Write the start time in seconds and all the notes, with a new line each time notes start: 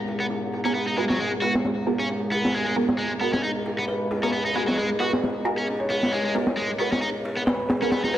Already playing: G#3 B3 G#4 F#5 A#5
0.08 ride
0.20 B3
0.30 ride
0.53 ride
0.65 B3 C#4 F#4 G#4 A#4, ride
0.74 B3, ride
0.87 D#4
0.97 G#3 B3 F#4 G#4 B4, ride
1.09 F#3, snare
1.19 G#3, ride
1.32 ride
1.42 B3 F#4 G#4 B4, ride
1.55 snare
1.65 snare, ride
1.87 B3 F#4 G#4 A#4, ride
2.00 C#4
2.09 ride
2.31 B3, ride
2.45 snare
2.54 G#3, ride
2.66 G#3
2.76 B3 F#4 G#4 A#4 D#5, ride
2.89 snare
2.98 G#3, ride
3.20 B3 F#4 G#4 A#4, open hi-hat
3.33 C#4, snare
3.43 D#4, ride
3.65 ride
3.79 B3
3.88 B4, ride
4.11 G#4, ride
4.23 B3 C#4 F#4 G#4 A#4, ride
4.33 B3, ride
4.45 D#4
4.55 G#3 B3 F#4 G#4 B4, ride
4.68 F#3, snare
4.78 G#3 G#4, ride
4.91 ride
5.00 B3 F#4 G#4 B4, ride
5.13 snare
5.23 snare, ride
5.45 B3 F#4 G#4 A#4, ride
5.58 C#4
5.67 ride
5.80 C#5
5.89 B3 C#5, ride
6.03 snare
6.12 G#3, ride
6.25 G#3
6.35 B3 F#4 G#4 A#4, ride
6.47 snare
6.57 G#3, ride
6.79 B3 F#4 G#4 A#4, open hi-hat
6.92 C#4, snare
7.02 D#4, ride
7.25 ride
7.37 B3
7.46 B4, snare, open hi-hat
7.69 G#4, snare, open hi-hat
7.81 B3 C#4 F#4 G#4 A#4, ride
7.92 B3, snare, open hi-hat
8.04 D#4, snare
8.14 G#3 B3 F#4 G#4 B4, ride